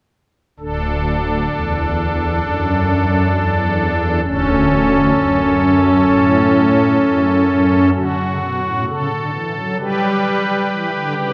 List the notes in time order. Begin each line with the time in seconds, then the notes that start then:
0.59 D1 D2 D4 A4
1.50 E2
2.42 F#2
3.34 E2
4.23 D1 D2 C#4 A4
5.16 F#2
6.06 A2
7.00 F#2
7.95 D3 F#4
8.19 C#3
8.40 B2
8.65 A2
8.87 C#3 A4
9.12 D3
9.34 E3
9.57 F#3
9.79 G3 G4 B4
10.71 E3
10.94 D3
11.17 C#3 B4